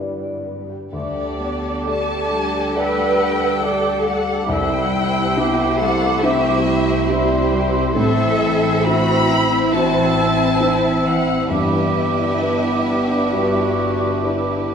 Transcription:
0.00 0.69 G2 soft
0.00 0.97 G2 soft
0.00 0.91 D3 soft
0.00 0.69 G3 soft
0.00 0.69 B3 soft
0.00 0.43 E4 medium
0.00 0.83 E4 soft
0.00 0.68 G4 soft
0.00 0.97 G4 soft
0.00 0.45 B4 soft
0.00 0.97 B4 soft
0.00 0.22 D5 soft
0.00 0.97 D5 soft
0.00 0.14 E5 soft
0.23 1.84 D5 soft
0.46 0.97 B4 soft
0.69 1.38 G4 soft
0.92 1.84 D2 soft
0.92 4.46 D2 soft
0.92 2.74 D3 soft
0.92 4.46 G3 soft
0.92 4.45 A3 soft
0.92 1.41 A3 soft
0.92 4.45 D4 medium
0.92 4.46 D4 soft
0.92 4.46 G4 soft
0.92 4.46 A4 soft
0.92 1.83 D5 medium
0.92 2.72 D6 soft
1.15 2.30 A3 soft
1.39 1.88 B3 soft
1.39 2.52 G4 soft
1.62 2.08 A4 soft
1.86 2.32 A3 medium
1.86 2.72 G4 soft
1.86 2.72 A4 soft
1.86 3.62 D5 soft
1.86 2.72 D5 soft
1.86 2.76 A5 medium
2.09 3.40 A4 soft
2.31 3.61 G3 soft
2.31 2.96 A3 soft
2.53 3.18 G4 soft
2.75 4.53 D3 soft
2.75 3.60 G4 soft
2.75 3.60 A4 soft
2.75 3.60 B4 medium
2.75 3.60 D5 soft
2.75 4.07 G5 medium
2.75 3.64 E6 soft
2.97 4.05 A3 soft
3.19 4.27 G4 soft
3.42 3.84 A4 soft
3.62 5.39 G3 medium
3.62 4.46 G4 soft
3.62 4.46 A4 soft
3.62 4.50 A4 medium
3.62 4.46 D5 soft
3.62 4.54 D5 soft
3.62 4.07 D6 medium
3.85 4.54 A4 soft
4.06 4.53 A3 soft
4.06 4.50 F#5 medium
4.06 4.50 D6 medium
4.28 7.99 G4 soft
4.48 5.34 C2 medium
4.48 7.92 C2 medium
4.48 7.95 C3 medium
4.48 7.92 C3 medium
4.48 6.22 C3 medium
4.48 7.94 E4 medium
4.48 7.92 E4 medium
4.48 5.36 E4 medium
4.48 7.92 C5 medium
4.48 5.81 G5 medium
4.48 4.93 E6 medium
4.71 5.80 G3 soft
4.94 5.37 E6 medium
5.15 5.58 E4 soft
5.37 6.19 C3 soft
5.37 5.81 B3 medium
5.37 6.20 E4 soft
5.37 5.81 G4 medium
5.37 6.20 E5 soft
5.37 7.08 E5 medium
5.37 6.84 D6 medium
5.59 6.87 E4 soft
5.79 6.44 G3 soft
5.79 7.11 A3 medium
5.79 6.24 A4 medium
5.79 6.23 F#5 medium
6.02 6.65 C4 medium
6.23 8.00 C3 medium
6.23 7.05 C4 soft
6.23 7.05 E4 soft
6.23 6.66 G4 medium
6.23 7.53 E5 medium
6.23 7.06 E5 medium
6.45 7.50 G3 soft
6.66 7.72 C4 soft
6.66 7.94 G4 medium
6.88 7.29 E4 soft
7.09 7.94 G3 medium
7.09 7.92 C4 soft
7.09 7.92 E4 soft
7.09 8.84 E5 medium
7.09 7.92 E5 medium
7.09 7.96 C6 medium
7.31 8.62 E4 soft
7.52 7.99 G3 soft
7.73 8.39 C4 soft
7.95 11.47 A1 medium
7.95 9.71 A2 medium
7.95 8.83 A2 medium
7.95 11.46 C4 medium
7.95 9.56 C4 medium
7.95 11.47 C4 medium
7.95 11.47 E4 medium
7.95 8.84 A4 medium
7.95 11.47 C5 medium
7.95 8.82 E5 medium
7.95 9.69 E6 medium
8.17 9.28 E3 soft
8.40 9.50 C4 soft
8.63 9.07 E4 medium
8.85 9.69 C4 soft
8.85 9.69 E4 soft
8.85 9.30 F#4 medium
8.85 10.59 E5 medium
8.85 9.69 E5 soft
8.85 9.72 B5 loud
9.08 10.37 E4 medium
9.29 9.73 E4 medium
9.51 10.16 C4 soft
9.72 11.54 A2 medium
9.72 10.57 C4 soft
9.72 11.48 C4 medium
9.72 10.57 E4 soft
9.72 10.17 F#4 medium
9.72 10.57 E5 soft
9.72 11.06 A5 medium
9.72 11.47 E6 medium
9.94 11.04 E3 soft
10.17 11.51 E4 medium
10.38 10.81 E4 soft
10.60 11.47 C4 soft
10.60 11.47 E4 soft
10.60 14.50 E5 soft
10.60 11.47 E5 soft
10.83 14.73 E4 soft
11.05 11.54 E3 soft
11.05 11.51 F#5 medium
11.28 11.54 C4 soft
11.50 14.75 G1 medium
11.50 12.38 G2 medium
11.50 13.31 G2 medium
11.50 14.75 G3 medium
11.50 12.31 B3 soft
11.50 14.75 B3 medium
11.50 14.75 D4 medium
11.50 14.66 E4 medium
11.50 14.75 G4 medium
11.50 14.75 B4 medium
11.50 14.69 E5 medium
11.50 14.75 D6 soft
11.73 12.86 D3 soft
11.96 13.08 D4 soft
12.41 13.34 B3 medium
12.41 13.28 D4 soft
12.41 13.28 G4 soft
12.41 14.22 B4 soft
12.41 13.29 B4 soft
12.87 13.53 D3 soft
13.09 13.75 D4 soft
13.32 14.75 G2 soft
13.32 14.19 G3 soft
13.32 14.19 D4 soft
13.32 14.24 F#4 medium
13.32 14.19 B4 soft
13.54 14.67 D3 soft
13.77 14.75 D4 soft
14.23 14.75 D4 soft
14.23 14.75 E4 medium
14.23 14.75 G4 soft
14.23 14.75 B4 soft
14.69 14.75 D3 soft

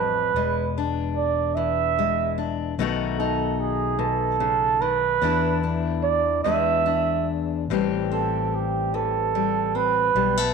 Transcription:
0.00 0.30 A1 medium
0.00 0.35 F2 soft
0.00 0.31 E3 soft
0.00 0.36 G3 soft
0.00 0.31 C4 soft
0.00 0.32 G4 soft
0.00 0.73 B4 medium
0.34 2.74 E1 medium
0.34 2.79 E2 medium
0.34 1.97 G#3 soft
0.78 2.37 D4 soft
1.16 1.57 D5 medium
1.56 2.73 E3 soft
1.56 2.47 E5 medium
1.99 2.74 G#3 soft
2.38 2.73 D4 soft
2.78 5.18 B1 medium
2.78 3.97 B2 medium
2.78 4.80 D#3 medium
2.78 5.18 A3 medium
2.78 3.19 D#4 medium
2.78 5.18 F#4 medium
3.18 5.17 D#4 soft
3.18 3.62 A4 medium
3.60 4.01 G#4 medium
3.99 4.40 B2 medium
3.99 4.83 A4 medium
4.40 4.81 C#3 medium
4.82 5.22 D#3 soft
4.82 5.63 B4 medium
5.21 6.43 E2 medium
5.21 6.42 E2 medium
5.21 6.45 E3 soft
5.21 6.40 A3 soft
5.21 5.62 D4 medium
5.21 6.47 E4 soft
5.63 6.40 D4 soft
6.03 6.42 D5 medium
6.44 7.68 E2 medium
6.44 7.66 E2 medium
6.44 7.71 E3 soft
6.44 7.64 G#3 soft
6.44 6.85 D4 soft
6.44 7.33 E5 medium
6.48 7.65 G#4 soft
6.86 7.63 D4 soft
7.69 10.11 A1 medium
7.69 10.15 A2 medium
7.69 8.93 E3 soft
7.69 9.34 G3 soft
7.69 8.10 C4 soft
7.73 10.12 G4 medium
8.11 9.74 C4 soft
8.11 8.56 A4 medium
8.54 8.96 G4 medium
8.94 10.54 E3 soft
8.94 9.78 A4 medium
9.35 10.14 G3 soft
9.75 10.10 C4 soft
9.75 10.54 B4 medium
10.15 10.54 B1 medium
10.15 10.54 B2 medium
10.15 10.37 G3 soft
10.37 10.54 A3 soft

